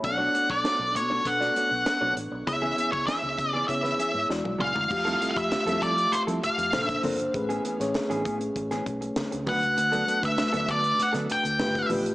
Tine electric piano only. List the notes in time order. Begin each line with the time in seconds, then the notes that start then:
Already playing: C#5 A5
0.04 B3 C#4 A4 D5
0.11 D4
1.25 B3 D4 A4 B4
2.47 B3 E4 G#4 C#5
3.68 B3 E4 G#4 C#5
4.29 G#3 E4 F#4 D5
4.89 A3 F4 G4 F5
5.35 A3 F4 G4 E5
6.72 A#3 D4 A4 C5
7.04 A#3 D4 A4 C5
7.34 A3 C#4 G#4 B4
7.80 A3 C#4 G#4 C#5
9.46 A3 D4 F#4 B4
10.22 A3 D4 F#4 B4
11.59 A3 F4 G4 B4
11.90 A3 F4 G4 B4